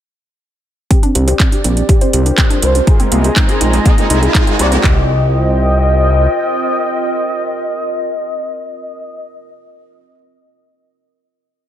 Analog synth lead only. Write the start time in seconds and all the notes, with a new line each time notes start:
0.90 G4
1.03 C4
1.15 C4
1.27 G4
1.40 C4
1.52 G4
1.64 C4
1.77 C4
1.89 G4
2.01 C4
2.13 C4
2.38 C4
2.50 C4
2.63 C5
2.75 C4
2.87 G#4
3.00 G#3
3.12 G#3
3.24 G#4
3.37 G#3
3.49 G#4
3.61 G#3
3.74 G#3
3.85 G#4
3.98 G#3
4.10 G#3
4.35 G#3
4.47 G#3
4.59 D5
4.72 G#3
4.84 D#5